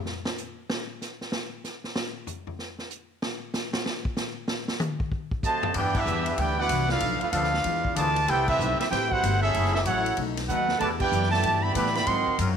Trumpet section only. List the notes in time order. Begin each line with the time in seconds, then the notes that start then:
5.45 F#4 C5 D#5 A5
5.77 E4 B4 D5 G5
5.98 D4 G4 B4 E5
6.29 D4 G4 B4 E5
6.38 E4 B4 D5 G5
6.60 E4 B4 D5 F#5
6.91 D4 A4 B4 F5
7.22 D4 A4 B4 F5
7.33 D4 A4 B4 F5
7.97 F4 B4 D5 A5
8.28 E4 B4 C5 G5
8.48 C4 G4 B4 E5
8.80 C4 G4 B4 E5
8.91 E4 B4 C5 G5
9.11 E4 B4 C5 F#5
9.42 C#4 G#4 A4 E5
9.74 C#4 G#4 A4 E5
9.87 E4 A4 C#5 F#5
10.48 D#4 A4 B4 F#5
10.79 F#4 B4 D5 A5
11.01 E4 B4 D5 G5
11.31 G4 D5 E5 A5
11.63 G4 D5 E5 B5
11.75 G4 D5 E5 B5
11.96 G4 D5 E5 B5
12.07 A#4 D#5 F#5 C6